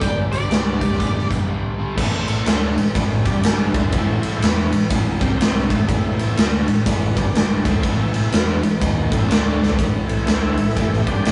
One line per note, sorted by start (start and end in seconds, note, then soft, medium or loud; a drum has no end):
0.00 0.50 G1 medium
0.00 0.31 G2 medium
0.00 0.32 D3 medium
0.00 0.32 G3 medium
0.00 0.67 D4 medium
0.00 0.67 G4 medium
0.00 0.67 B4 medium
0.00 0.17 G5 medium
0.00 kick loud
0.00 closed hi-hat medium
0.05 0.19 D5 medium
0.32 0.49 G2 medium
0.32 0.49 D3 medium
0.32 0.50 G3 medium
0.32 1.27 G4 medium
0.32 1.26 D5 medium
0.32 closed hi-hat medium
0.50 0.98 C2 medium
0.50 0.80 G2 medium
0.50 0.81 D3 medium
0.50 0.80 G3 medium
0.50 snare loud
0.50 closed hi-hat medium
0.81 0.98 G2 medium
0.81 0.99 D3 medium
0.81 0.99 G3 loud
0.81 kick medium
0.81 closed hi-hat medium
0.93 snare soft
0.98 1.48 B1 medium
0.98 1.29 G2 medium
0.98 1.30 D3 medium
0.98 1.30 G3 medium
0.98 1.18 D4 medium
0.98 1.19 G4 medium
0.98 1.20 B4 medium
0.98 kick medium
0.98 closed hi-hat medium
1.19 snare soft
1.27 1.46 G2 medium
1.27 1.47 D3 medium
1.27 1.75 D4 medium
1.27 1.76 G4 medium
1.27 1.76 B4 medium
1.27 kick medium
1.27 closed hi-hat medium
1.32 1.48 G3 medium
1.48 1.77 G2 medium
1.48 1.78 D3 medium
1.48 1.78 G3 medium
1.78 1.96 G2 medium
1.78 1.96 D3 medium
1.78 1.97 G3 medium
1.94 2.45 A2 medium
1.94 2.45 E3 medium
1.94 2.62 E4 medium
1.94 2.61 A4 medium
1.94 2.62 C5 medium
1.98 2.43 A1 medium
1.98 2.44 A3 medium
1.98 kick medium
1.98 crash loud
2.28 ride medium
2.45 2.74 D2 medium
2.45 2.75 D3 medium
2.45 2.75 A3 medium
2.45 2.76 D4 loud
2.45 snare loud
2.45 ride medium
2.76 2.94 A1 medium
2.76 2.91 A2 medium
2.76 2.91 E3 medium
2.76 ride medium
2.94 3.24 A1 loud
2.94 3.24 A2 medium
2.94 3.25 E3 medium
2.94 3.25 A3 loud
2.94 kick loud
2.94 ride medium
3.24 3.71 G1 medium
3.24 3.73 G2 medium
3.24 3.73 D3 medium
3.24 3.74 G3 loud
3.24 3.61 D4 medium
3.24 3.62 G4 medium
3.24 3.62 D5 medium
3.24 kick loud
3.24 ride medium
3.43 snare loud
3.43 ride medium
3.72 3.92 D2 medium
3.72 3.92 D3 medium
3.72 3.92 A3 medium
3.72 3.93 D4 loud
3.72 4.47 E4 medium
3.72 4.46 A4 medium
3.72 4.47 C5 loud
3.72 kick loud
3.72 ride medium
3.92 4.38 A1 medium
3.92 4.41 A2 medium
3.92 4.40 E3 medium
3.92 4.42 A3 loud
3.92 kick loud
3.92 ride medium
4.23 ride medium
4.41 4.70 E2 medium
4.41 4.71 E3 medium
4.41 4.71 B3 medium
4.41 4.71 E4 loud
4.41 snare loud
4.41 ride loud
4.72 4.90 A1 medium
4.72 4.87 A2 medium
4.72 4.87 E3 medium
4.72 ride medium
4.90 5.19 A1 medium
4.90 5.20 A2 medium
4.90 5.20 E3 loud
4.90 5.20 A3 loud
4.90 kick loud
4.90 ride loud
5.20 5.66 C2 loud
5.20 5.69 C3 medium
5.20 5.69 G3 medium
5.20 5.57 C4 medium
5.20 5.69 C4 medium
5.20 5.57 G4 medium
5.20 5.58 C5 medium
5.20 kick loud
5.20 ride medium
5.41 snare loud
5.41 ride loud
5.69 5.87 A1 medium
5.69 5.87 A2 medium
5.69 5.87 E3 medium
5.69 5.87 A3 medium
5.69 6.43 E4 medium
5.69 6.42 A4 medium
5.69 6.43 C5 loud
5.69 kick loud
5.69 ride medium
5.88 6.34 A1 loud
5.88 6.36 A2 medium
5.88 6.36 E3 loud
5.88 6.37 A3 loud
5.88 kick loud
5.88 ride medium
6.19 ride medium
6.37 6.65 D2 medium
6.37 6.66 D3 medium
6.37 6.67 A3 loud
6.37 6.67 D4 loud
6.37 snare loud
6.37 ride medium
6.67 6.84 A1 medium
6.67 6.83 A2 medium
6.67 6.83 E3 medium
6.67 ride medium
6.86 7.14 A1 medium
6.86 7.15 A2 medium
6.86 7.16 E3 loud
6.86 7.16 A3 loud
6.86 kick loud
6.86 ride medium
7.14 7.62 G1 medium
7.14 7.64 G2 medium
7.14 7.64 D3 medium
7.14 7.51 D4 medium
7.14 7.52 G4 medium
7.14 7.53 D5 medium
7.14 kick loud
7.14 ride medium
7.18 7.65 G3 loud
7.35 snare loud
7.35 ride medium
7.65 7.82 D2 medium
7.65 7.83 D3 medium
7.65 7.83 A3 loud
7.65 7.83 D4 loud
7.65 8.39 E4 medium
7.65 8.40 A4 medium
7.65 8.40 C5 loud
7.65 kick loud
7.65 ride medium
7.83 8.29 A1 medium
7.83 8.31 A2 medium
7.83 8.30 E3 loud
7.83 8.32 A3 loud
7.83 kick medium
7.83 ride medium
8.14 ride medium
8.32 8.61 E2 medium
8.32 8.61 E3 medium
8.32 8.62 B3 medium
8.32 8.62 E4 medium
8.32 snare loud
8.32 ride medium
8.63 8.80 A1 medium
8.63 8.77 A2 medium
8.63 8.77 E3 medium
8.63 ride medium
8.80 9.10 D#2 medium
8.80 9.10 D#3 medium
8.80 9.10 A#3 medium
8.80 9.10 D#4 medium
8.80 kick loud
8.80 ride medium
9.11 9.29 A1 medium
9.11 9.28 A2 medium
9.11 9.29 E3 medium
9.11 9.29 A3 loud
9.11 9.29 E4 medium
9.11 9.29 A4 medium
9.11 9.30 C5 medium
9.11 kick loud
9.11 ride medium
9.28 9.75 D2 medium
9.28 9.77 D3 medium
9.28 9.77 A3 medium
9.28 9.71 D4 medium
9.28 9.78 D4 loud
9.28 9.72 A4 medium
9.28 snare loud
9.28 ride medium
9.32 9.73 D5 medium
9.63 snare medium
9.69 floor tom medium
9.77 10.24 A1 medium
9.77 10.26 A2 medium
9.77 10.26 E3 medium
9.77 10.27 A3 medium
9.77 kick loud
9.77 ride medium
10.06 11.02 E3 soft
10.06 11.02 A3 soft
10.06 10.29 C4 medium
10.06 ride medium
10.25 10.56 D2 medium
10.25 10.57 D3 medium
10.25 10.57 A3 loud
10.25 10.29 B3 medium
10.25 10.57 D4 medium
10.25 snare loud
10.25 ride medium
10.30 10.45 C4 loud
10.44 10.76 E4 medium
10.57 10.76 A1 medium
10.57 10.73 A2 medium
10.57 10.73 E3 medium
10.57 ride medium
10.69 snare soft
10.76 11.05 A1 medium
10.76 11.06 A2 medium
10.76 11.06 E3 medium
10.76 11.06 A3 medium
10.76 11.06 G4 medium
10.76 kick loud
10.76 ride medium
10.93 snare soft
11.06 11.32 G1 medium
11.06 11.32 G2 medium
11.06 11.32 D3 medium
11.06 11.32 D3 soft
11.06 11.32 G3 medium
11.06 11.32 G3 soft
11.06 11.32 D4 medium
11.06 11.32 G4 medium
11.06 kick loud
11.06 ride medium
11.25 snare loud
11.25 ride medium